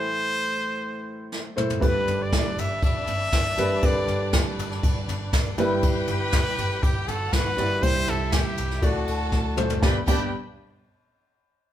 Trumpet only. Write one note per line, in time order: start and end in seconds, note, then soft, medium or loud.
0.00 1.58 C5 loud
1.84 2.24 B4 loud
2.22 2.61 D5 medium
2.60 2.84 E5 medium
2.85 3.87 E5 loud
3.86 4.34 D5 loud
5.83 6.85 B4 loud
6.83 7.09 G4 medium
7.08 7.34 A4 loud
7.33 7.84 B4 loud
7.83 8.11 C5 loud
8.09 8.35 A4 loud
8.34 8.87 G4 loud
8.86 9.59 F#4 medium
9.84 9.98 G4 medium
10.08 10.32 G4 medium